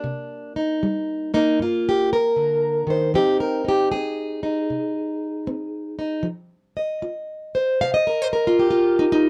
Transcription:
0.00 0.76 C3 medium
0.00 1.33 A#3 soft
0.00 0.55 D4 soft
0.56 1.34 D#4 soft
0.83 1.54 G3 medium
1.34 3.15 A#3 soft
1.34 1.60 D#4 medium
1.59 2.31 G2 medium
1.59 2.11 F4 medium
1.89 2.12 G4 medium
2.13 2.89 A#4 medium
2.36 2.86 D3 medium
2.87 3.14 D#3 medium
2.87 3.15 C5 medium
3.14 3.86 F3 medium
3.14 3.93 C4 soft
3.14 3.64 D#4 soft
3.14 3.40 G4 medium
3.40 3.66 A#4 medium
3.65 4.43 D#4 soft
3.65 3.91 G4 medium
3.92 4.65 C4 medium
3.92 6.24 G#4 medium
4.43 5.98 D#4 soft
4.70 5.42 C3 medium
5.47 6.19 C4 medium
5.99 6.26 D#4 soft
6.23 6.95 F3 medium
6.77 7.81 D#5 soft
7.02 7.74 F4 medium
7.55 8.07 C5 soft
7.81 8.53 C3 medium
7.81 7.93 F5 loud
7.94 8.55 D#5 medium
8.07 8.22 A#4 medium
8.22 8.27 C5 medium
8.33 9.26 A#4 medium
8.47 8.69 F4 medium
8.59 9.29 G4 medium
8.71 9.29 F4 medium
8.99 9.04 D#4 medium
9.12 9.29 D#4 loud

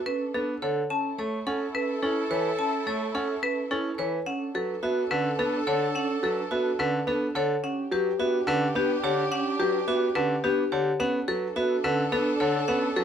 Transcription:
0.00 0.73 D4 medium
0.00 0.73 A4 medium
0.06 0.25 C#4 medium
0.06 0.25 B4 loud
0.34 0.53 B3 medium
0.34 0.53 D4 medium
0.34 0.53 A4 medium
0.62 0.81 D3 medium
0.62 0.81 A4 loud
0.62 0.81 C#5 medium
0.90 1.09 C#4 medium
0.90 4.09 E4 medium
0.90 4.09 A4 medium
0.90 1.09 A5 medium
1.18 1.37 A3 medium
1.18 1.37 A4 medium
1.18 1.37 C#5 medium
1.47 1.65 C#4 medium
1.47 1.65 A4 medium
1.47 1.65 F#5 medium
1.75 1.93 C#4 medium
1.75 1.93 B4 loud
2.03 2.21 C#4 medium
2.03 2.21 E4 medium
2.03 2.21 A4 medium
2.31 2.49 E3 medium
2.31 2.49 B4 loud
2.31 2.49 C#5 medium
2.59 2.77 C#4 medium
2.59 2.77 A5 medium
2.87 3.05 A3 medium
2.87 3.05 A4 medium
2.87 3.05 C#5 medium
3.15 3.33 C#4 medium
3.15 3.33 A4 medium
3.15 3.33 F#5 medium
3.43 3.61 C#4 medium
3.43 3.61 B4 loud
3.71 3.89 C#4 medium
3.71 3.89 E4 medium
3.71 3.89 A4 medium
3.98 4.17 E3 medium
3.98 4.17 B4 loud
3.98 4.17 C#5 medium
4.26 4.45 C#4 medium
4.26 7.46 D4 medium
4.26 7.46 A4 medium
4.26 4.45 F#5 loud
4.55 4.73 F#3 medium
4.55 4.73 A4 medium
4.55 4.73 B4 medium
4.83 5.01 B3 medium
4.83 5.01 F#4 loud
4.83 5.02 E5 medium
5.11 5.29 D3 loud
5.11 5.29 C#4 medium
5.11 5.29 B4 loud
5.39 5.57 B3 medium
5.39 5.57 D4 medium
5.39 5.58 A4 medium
5.67 5.86 D3 medium
5.67 5.85 A4 loud
5.67 5.86 C#5 medium
5.95 6.13 C#4 medium
5.95 6.14 F#5 loud
6.23 6.42 F#3 medium
6.23 6.42 A4 medium
6.23 6.42 B4 medium
6.51 6.70 B3 medium
6.51 6.70 F#4 loud
6.51 6.70 E5 medium
6.79 6.98 D3 loud
6.79 6.98 C#4 medium
6.79 6.98 B4 loud
7.07 7.26 B3 medium
7.07 7.26 D4 medium
7.07 7.26 A4 medium
7.35 7.54 D3 medium
7.35 7.54 A4 loud
7.35 7.54 C#5 medium
7.63 7.82 C#4 medium
7.63 10.82 D4 medium
7.63 10.82 G4 loud
7.63 7.82 F#5 loud
7.91 8.10 F#3 medium
7.91 8.10 G4 medium
7.91 8.10 B4 medium
8.19 8.38 B3 medium
8.19 8.38 F#4 loud
8.19 8.38 E5 medium
8.47 8.66 D3 loud
8.47 8.66 C#4 medium
8.47 8.66 B4 loud
8.75 8.94 B3 loud
8.75 8.94 D4 medium
8.75 8.94 G4 medium
9.03 9.22 D3 medium
9.03 9.22 G4 loud
9.03 9.22 C#5 medium
9.32 9.50 C#4 medium
9.32 9.50 F#5 loud
9.59 9.78 F#3 medium
9.59 9.78 G4 medium
9.59 9.78 B4 medium
9.88 10.06 B3 medium
9.88 10.06 F#4 loud
9.88 10.06 E5 medium
10.15 10.34 D3 medium
10.15 10.34 C#4 medium
10.15 10.34 B4 loud
10.44 10.62 B3 medium
10.44 10.62 D4 medium
10.44 10.62 G4 medium
10.72 10.90 D3 medium
10.72 10.90 G4 loud
10.72 10.90 C#5 medium
11.00 11.18 B3 loud
11.00 11.18 C#4 medium
11.00 13.04 D4 loud
11.00 13.04 A4 medium
11.00 11.18 F#5 loud
11.28 11.46 F#3 medium
11.28 11.46 A4 medium
11.28 11.46 B4 medium
11.56 11.74 B3 medium
11.56 11.74 F#4 loud
11.56 11.74 E5 medium
11.84 12.02 D3 loud
11.84 12.02 C#4 medium
11.84 12.03 B4 loud
12.12 12.30 B3 loud
12.12 12.30 D4 medium
12.12 12.31 A4 medium
12.40 12.59 D3 medium
12.40 12.59 A4 loud
12.40 12.59 C#5 medium
12.68 12.87 B3 loud
12.68 12.87 C#4 medium
12.68 12.86 F#5 loud
12.96 13.04 F#3 medium
12.96 13.04 A4 medium
12.96 13.04 B4 medium

